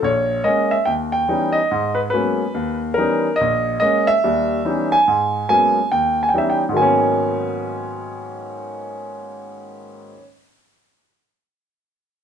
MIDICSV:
0, 0, Header, 1, 2, 480
1, 0, Start_track
1, 0, Key_signature, 5, "minor"
1, 0, Tempo, 419874
1, 38, Time_signature, 4, 2, 24, 8
1, 13981, End_track
2, 0, Start_track
2, 0, Title_t, "Grand piano"
2, 0, Program_c, 0, 0
2, 28, Note_on_c, 0, 34, 65
2, 49, Note_on_c, 0, 73, 87
2, 447, Note_off_c, 0, 34, 0
2, 503, Note_on_c, 0, 75, 79
2, 506, Note_on_c, 0, 56, 50
2, 512, Note_on_c, 0, 58, 46
2, 523, Note_on_c, 0, 61, 52
2, 536, Note_off_c, 0, 73, 0
2, 813, Note_on_c, 0, 76, 82
2, 831, Note_off_c, 0, 75, 0
2, 840, Note_off_c, 0, 56, 0
2, 842, Note_off_c, 0, 58, 0
2, 848, Note_off_c, 0, 61, 0
2, 977, Note_on_c, 0, 79, 81
2, 993, Note_off_c, 0, 76, 0
2, 993, Note_on_c, 0, 39, 56
2, 1049, Note_off_c, 0, 79, 0
2, 1284, Note_on_c, 0, 79, 85
2, 1408, Note_off_c, 0, 39, 0
2, 1467, Note_on_c, 0, 52, 48
2, 1467, Note_on_c, 0, 59, 44
2, 1469, Note_on_c, 0, 55, 45
2, 1475, Note_on_c, 0, 61, 43
2, 1476, Note_on_c, 0, 63, 51
2, 1740, Note_off_c, 0, 79, 0
2, 1743, Note_on_c, 0, 75, 85
2, 1799, Note_off_c, 0, 52, 0
2, 1799, Note_off_c, 0, 59, 0
2, 1800, Note_off_c, 0, 55, 0
2, 1803, Note_off_c, 0, 61, 0
2, 1804, Note_off_c, 0, 63, 0
2, 1959, Note_on_c, 0, 44, 66
2, 2225, Note_on_c, 0, 71, 76
2, 2259, Note_off_c, 0, 75, 0
2, 2282, Note_off_c, 0, 71, 0
2, 2371, Note_off_c, 0, 44, 0
2, 2401, Note_on_c, 0, 71, 82
2, 2439, Note_on_c, 0, 54, 51
2, 2443, Note_on_c, 0, 56, 43
2, 2443, Note_on_c, 0, 58, 50
2, 2447, Note_on_c, 0, 59, 43
2, 2447, Note_on_c, 0, 61, 54
2, 2765, Note_off_c, 0, 54, 0
2, 2767, Note_off_c, 0, 56, 0
2, 2767, Note_off_c, 0, 58, 0
2, 2769, Note_off_c, 0, 59, 0
2, 2769, Note_off_c, 0, 61, 0
2, 2908, Note_on_c, 0, 39, 59
2, 3163, Note_off_c, 0, 71, 0
2, 3325, Note_off_c, 0, 39, 0
2, 3362, Note_on_c, 0, 70, 85
2, 3399, Note_on_c, 0, 52, 48
2, 3400, Note_on_c, 0, 59, 45
2, 3402, Note_on_c, 0, 55, 47
2, 3409, Note_on_c, 0, 61, 44
2, 3411, Note_on_c, 0, 63, 55
2, 3725, Note_off_c, 0, 52, 0
2, 3725, Note_off_c, 0, 59, 0
2, 3726, Note_off_c, 0, 55, 0
2, 3729, Note_off_c, 0, 61, 0
2, 3730, Note_off_c, 0, 63, 0
2, 3841, Note_on_c, 0, 75, 92
2, 3872, Note_off_c, 0, 70, 0
2, 3898, Note_on_c, 0, 34, 65
2, 4301, Note_off_c, 0, 34, 0
2, 4324, Note_off_c, 0, 75, 0
2, 4341, Note_on_c, 0, 75, 92
2, 4364, Note_on_c, 0, 56, 55
2, 4367, Note_on_c, 0, 58, 47
2, 4374, Note_on_c, 0, 61, 55
2, 4637, Note_off_c, 0, 75, 0
2, 4656, Note_on_c, 0, 76, 102
2, 4687, Note_off_c, 0, 56, 0
2, 4689, Note_off_c, 0, 58, 0
2, 4692, Note_off_c, 0, 61, 0
2, 4846, Note_on_c, 0, 39, 63
2, 4847, Note_on_c, 0, 55, 56
2, 5255, Note_off_c, 0, 39, 0
2, 5255, Note_off_c, 0, 55, 0
2, 5315, Note_on_c, 0, 52, 49
2, 5321, Note_on_c, 0, 55, 42
2, 5322, Note_on_c, 0, 59, 44
2, 5324, Note_on_c, 0, 63, 49
2, 5327, Note_on_c, 0, 61, 46
2, 5575, Note_off_c, 0, 76, 0
2, 5625, Note_on_c, 0, 80, 96
2, 5643, Note_off_c, 0, 52, 0
2, 5645, Note_off_c, 0, 55, 0
2, 5646, Note_off_c, 0, 59, 0
2, 5647, Note_off_c, 0, 63, 0
2, 5649, Note_off_c, 0, 61, 0
2, 5804, Note_on_c, 0, 44, 61
2, 6214, Note_off_c, 0, 44, 0
2, 6261, Note_off_c, 0, 80, 0
2, 6278, Note_on_c, 0, 80, 96
2, 6284, Note_on_c, 0, 54, 52
2, 6285, Note_on_c, 0, 56, 44
2, 6286, Note_on_c, 0, 59, 47
2, 6288, Note_on_c, 0, 58, 47
2, 6298, Note_on_c, 0, 61, 50
2, 6607, Note_off_c, 0, 54, 0
2, 6608, Note_off_c, 0, 56, 0
2, 6608, Note_off_c, 0, 59, 0
2, 6609, Note_off_c, 0, 58, 0
2, 6614, Note_off_c, 0, 61, 0
2, 6722, Note_off_c, 0, 80, 0
2, 6762, Note_on_c, 0, 79, 86
2, 6767, Note_on_c, 0, 39, 56
2, 7090, Note_off_c, 0, 79, 0
2, 7120, Note_on_c, 0, 80, 69
2, 7176, Note_off_c, 0, 39, 0
2, 7187, Note_off_c, 0, 80, 0
2, 7188, Note_on_c, 0, 79, 68
2, 7241, Note_on_c, 0, 52, 46
2, 7248, Note_on_c, 0, 55, 44
2, 7255, Note_on_c, 0, 63, 51
2, 7256, Note_on_c, 0, 61, 42
2, 7257, Note_on_c, 0, 59, 42
2, 7277, Note_off_c, 0, 79, 0
2, 7294, Note_on_c, 0, 76, 70
2, 7419, Note_off_c, 0, 76, 0
2, 7427, Note_on_c, 0, 79, 72
2, 7554, Note_off_c, 0, 79, 0
2, 7566, Note_off_c, 0, 52, 0
2, 7570, Note_off_c, 0, 55, 0
2, 7573, Note_off_c, 0, 61, 0
2, 7573, Note_off_c, 0, 63, 0
2, 7574, Note_off_c, 0, 59, 0
2, 7647, Note_on_c, 0, 44, 56
2, 7681, Note_on_c, 0, 51, 57
2, 7710, Note_on_c, 0, 54, 55
2, 7735, Note_on_c, 0, 80, 77
2, 7737, Note_on_c, 0, 58, 54
2, 7758, Note_on_c, 0, 59, 54
2, 7793, Note_on_c, 0, 61, 72
2, 11539, Note_off_c, 0, 44, 0
2, 11573, Note_off_c, 0, 51, 0
2, 11581, Note_off_c, 0, 80, 0
2, 11602, Note_off_c, 0, 54, 0
2, 11629, Note_off_c, 0, 58, 0
2, 11650, Note_off_c, 0, 59, 0
2, 11685, Note_off_c, 0, 61, 0
2, 13981, End_track
0, 0, End_of_file